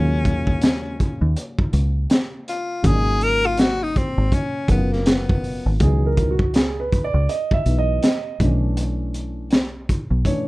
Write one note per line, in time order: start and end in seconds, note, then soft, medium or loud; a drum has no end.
0.00 1.17 D#2 loud
0.00 2.80 C#3 medium
0.00 2.80 F#3 medium
0.00 2.81 G#3 medium
0.00 2.81 A#3 medium
0.00 1.38 C#4 medium
0.00 2.82 F4 medium
0.25 kick medium
0.25 closed hi-hat medium
0.47 kick medium
0.61 snare loud
0.61 closed hi-hat medium
1.00 kick medium
1.00 closed hi-hat medium
1.22 1.34 D#2 medium
1.36 closed hi-hat medium
1.59 kick medium
1.73 2.06 C#2 loud
1.73 closed hi-hat medium
2.10 snare loud
2.10 closed hi-hat loud
2.48 2.88 F4 medium
2.48 closed hi-hat medium
2.82 4.14 G#1 loud
2.82 4.65 C#3 medium
2.82 4.65 F#3 medium
2.82 4.66 G#3 medium
2.82 4.66 A#3 medium
2.82 2.93 D4 medium
2.82 kick loud
2.82 closed hi-hat loud
2.87 3.25 G#4 loud
2.93 4.69 D#4 medium
3.21 3.48 A#4 loud
3.21 closed hi-hat medium
3.46 3.63 F4 loud
3.57 3.85 F#4 loud
3.57 snare loud
3.57 closed hi-hat medium
3.84 3.99 D#4 loud
3.96 4.36 C4 medium
3.96 kick medium
3.96 closed hi-hat medium
4.18 4.31 G#1 medium
4.32 4.71 C#4 loud
4.32 kick medium
4.32 closed hi-hat medium
4.68 5.61 F#1 loud
4.68 5.80 C#3 medium
4.68 5.79 F#3 medium
4.68 5.80 B3 medium
4.68 4.94 B3 medium
4.68 4.78 D#4 soft
4.68 5.81 A#4 soft
4.68 kick loud
4.68 closed hi-hat medium
4.77 5.84 F4 medium
4.93 5.09 A#3 medium
4.93 snare soft
5.06 5.81 B3 medium
5.06 snare loud
5.06 closed hi-hat loud
5.29 kick medium
5.44 open hi-hat medium
5.66 5.79 G#1 medium
5.80 7.10 C#2 loud
5.80 6.33 E3 medium
5.80 6.33 F#3 medium
5.80 6.33 B3 soft
5.80 6.33 D#4 medium
5.80 6.07 G#4 medium
5.80 kick loud
5.80 closed hi-hat loud
6.06 6.31 A#4 medium
6.17 kick medium
6.17 closed hi-hat medium
6.31 6.56 F#4 medium
6.39 kick medium
6.54 6.78 G#4 medium
6.54 snare loud
6.54 closed hi-hat medium
6.80 7.05 B4 medium
6.93 kick medium
6.93 closed hi-hat medium
7.04 7.30 D5 loud
7.14 7.27 C#2 medium
7.29 7.55 D#5 medium
7.29 closed hi-hat medium
7.51 7.77 E5 medium
7.51 kick medium
7.66 7.98 B1 medium
7.66 7.99 E3 soft
7.66 7.99 F#3 soft
7.66 8.00 B3 soft
7.66 8.00 D#4 medium
7.66 closed hi-hat medium
7.79 8.49 D#5 loud
8.03 snare loud
8.03 closed hi-hat medium
8.40 9.88 B1 loud
8.40 9.47 E3 medium
8.40 9.47 A3 medium
8.40 9.48 C#4 medium
8.40 9.48 D4 medium
8.40 kick loud
8.40 closed hi-hat medium
8.77 closed hi-hat loud
9.14 closed hi-hat medium
9.51 snare loud
9.51 closed hi-hat medium
9.89 kick medium
9.89 closed hi-hat medium
10.11 10.23 B1 medium
10.25 10.48 E3 soft
10.25 10.48 A3 soft
10.25 10.48 C#4 soft
10.25 10.48 D4 medium
10.25 10.48 C#5 medium
10.25 kick medium
10.25 closed hi-hat medium